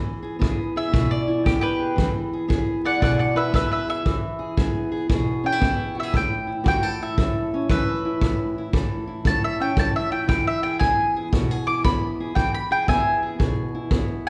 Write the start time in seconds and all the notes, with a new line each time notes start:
Already playing: E3 B3 E4 G#4
0.23 G#4
0.39 B3 G#4, kick
0.76 G#4 E5
0.91 B2 G#4, kick
1.11 D5
1.28 E4
1.45 B3 G4, kick
1.61 G4 B4
1.79 G#4
1.96 E3, kick
2.33 G#4
2.48 B3 G#4, kick
2.85 G#4 D5 F#5
3.00 B2 G#4 D5 F#5, kick
3.19 D5 F#5
3.35 E4 B4 E5
3.52 B3 B4 E5, kick
3.71 B4 E5
3.87 G#4 E5
4.05 E3, kick
4.39 G#4
4.57 B3 G#4, kick
4.92 G#4
5.10 B2 G#4, kick
5.44 C#4 G5
5.52 E4
5.60 B3, kick
5.95 F#4
6.00 G#4 E5
6.12 A2, kick
6.17 G5
6.47 E4
6.64 E3 F#4, kick
6.68 G5
6.83 A4
7.01 E4 E5
7.18 A2 A4, kick
7.54 C#4
7.69 E3 B4 E5, kick
8.05 E4
8.21 A2, kick
8.58 E4
8.73 E3 A4, kick
9.07 E4
9.25 A2 A4 A5, kick
9.44 E5
9.60 C#4 G5
9.75 E3 A5, kick
9.96 E5
10.11 E4 G5
10.28 E3 G5, kick
10.47 E5
10.63 G#4 G5
10.79 B3 G#4 G#5, kick
11.16 G#4
11.32 B2 F#4, kick
11.51 G#4
11.67 E4 D6
11.84 B3 B5, kick
12.20 G#4
12.35 E3 G5, kick
12.54 B5
12.71 G#4 G5
12.88 B3 G#4 E5 G#5, kick
13.23 G#4
13.39 B2 G#4, kick
13.75 E4
13.91 B3, kick